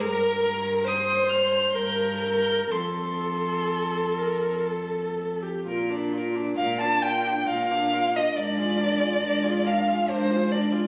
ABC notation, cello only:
X:1
M:3/4
L:1/8
Q:1/4=67
K:Bb
V:1 name="Cello" clef=bass
G,,4 G,,2 | F,,6 | B,,2 B,,2 B,,2 | _A,,2 A,,2 A,,2 |]